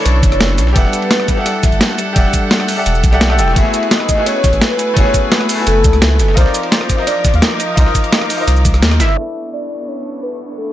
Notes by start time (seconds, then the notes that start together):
Already playing: E3 D4 E4 A4 C#6
0.00 B4 C#5
0.05 B1 C#5, closed hi-hat, ride, ride bell
0.23 F#1, kick, closed hi-hat, ride, ride bell, shaker
0.32 cross-stick, closed hi-hat
0.41 F#1, snare, closed hi-hat, ride, ride bell
0.58 B1, snare, closed hi-hat, ride, ride bell, shaker
0.67 snare
0.73 E1 G3 G4 A4 B4 D5 F#5, kick, closed hi-hat, ride, ride bell
0.77 E5 F#5
0.85 snare
0.93 closed hi-hat, ride, ride bell, shaker
1.02 ride
1.11 snare, closed hi-hat, ride, ride bell
1.20 cross-stick
1.28 kick, closed hi-hat, ride, ride bell, shaker
1.34 G4 A4 D5, snare
1.39 E5 F#5
1.46 E5, cross-stick, closed hi-hat, ride, ride bell
1.63 kick, snare, closed hi-hat, ride, ride bell, shaker
1.72 G1, closed hi-hat
1.81 snare, closed hi-hat, ride, ride bell
1.90 snare
1.98 closed hi-hat, ride, ride bell, shaker
2.13 E1 G4 A4 D5, kick, closed hi-hat, ride, ride bell
2.18 E5 F#5
2.25 snare
2.33 kick, closed hi-hat, ride, ride bell, shaker
2.51 snare, closed hi-hat, ride, ride bell
2.60 cross-stick, ride
2.68 open hi-hat, ride, ride bell, shaker
2.76 G4 A4 D5 E5 F#5
2.86 E1, closed hi-hat, ride, ride bell
2.95 shaker
3.04 B1, kick, closed hi-hat, ride, ride bell, shaker
3.11 G4 A4 D5 E5 F#5, cross-stick, closed hi-hat
3.21 B1, snare, closed hi-hat, ride, ride bell
3.29 G4 A4 D5 E5 F#5, cross-stick
3.37 E1 G4 A4 D5 E5 G5, snare, closed hi-hat, ride, ride bell, shaker
3.48 snare
3.53 F#1 A3 B3 E4 B4 G#5, kick, closed hi-hat, ride, ride bell
3.58 F#4 G#4
3.65 snare
3.74 closed hi-hat, ride, ride bell, shaker
3.83 ride
3.91 D#5, snare, closed hi-hat, ride, ride bell
4.00 cross-stick
4.09 kick, closed hi-hat, ride, ride bell, shaker
4.15 A3 B3 E4, snare
4.20 F#4 G#4
4.26 C#5, cross-stick, closed hi-hat, ride, ride bell
4.44 kick, snare, closed hi-hat, ride, ride bell, shaker
4.53 A1, closed hi-hat
4.61 B4, snare, closed hi-hat, ride, ride bell
4.70 snare
4.79 closed hi-hat, ride, ride bell, shaker
4.94 F#1 A3 B3 E4 C#5, kick, closed hi-hat, ride, ride bell
4.98 F#4 G#4
5.06 snare
5.14 kick, closed hi-hat, ride, ride bell, shaker
5.32 B4, snare, closed hi-hat, ride, ride bell
5.41 cross-stick, ride
5.49 open hi-hat, ride, ride bell, shaker
5.55 A3 B3 E4
5.60 F#4 G#5
5.67 F#1 A4, closed hi-hat, ride, ride bell
5.84 C#2, kick, closed hi-hat, ride, ride bell, shaker
5.93 cross-stick, closed hi-hat
6.02 C#2, snare, closed hi-hat, ride, ride bell
6.19 F#1, snare, closed hi-hat, ride, ride bell, shaker
6.28 snare
6.34 C2 F3 D#4 F4 A#4 C5 D6, kick, closed hi-hat, ride, ride bell
6.39 C5 D5
6.46 snare
6.54 closed hi-hat, ride, ride bell, shaker
6.63 ride
6.72 snare, closed hi-hat, ride, ride bell
6.81 cross-stick
6.89 kick, closed hi-hat, ride, ride bell, shaker
6.95 D#4 F4 A#4, snare
7.00 C5 D#5
7.07 D5, cross-stick, closed hi-hat, ride, ride bell
7.25 kick, snare, closed hi-hat, ride, ride bell, shaker
7.34 D#2 F5, closed hi-hat
7.42 D#5, snare, closed hi-hat, ride, ride bell
7.51 snare
7.60 closed hi-hat, ride, ride bell, shaker
7.74 C2 D#4 F4 A#4, kick, closed hi-hat, ride, ride bell
7.79 C5 D#5
7.86 snare
7.95 kick, closed hi-hat, ride, ride bell, shaker
8.04 closed hi-hat
8.12 snare, closed hi-hat, ride, ride bell
8.21 cross-stick, ride
8.30 open hi-hat, ride, ride bell, shaker
8.36 D#4 F4 A#4
8.41 C5 D#5
8.47 C2, closed hi-hat, ride, ride bell
8.56 shaker
8.65 kick, closed hi-hat, ride, ride bell, shaker
8.74 cross-stick, closed hi-hat
8.82 D#2, snare, closed hi-hat, ride, ride bell
8.91 cross-stick, closed hi-hat
9.00 G1 E5, snare, closed hi-hat, ride, ride bell, shaker
9.09 snare
9.14 B3 D4 E4 A4 C#6, downlifter
9.19 B4 E5
9.53 D5
9.88 C#5
10.23 B4
10.58 A4